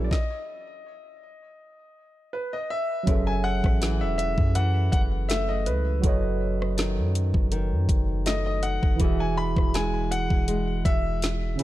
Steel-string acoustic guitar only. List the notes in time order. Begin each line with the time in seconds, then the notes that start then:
Already playing: F#2 E3
3.07 F#2
3.81 E3
4.55 E3
5.30 A3
6.04 F#2
6.78 D#3
7.52 D#3
8.26 A3
9.00 E3
9.74 G#3
10.48 G#3
11.59 C#3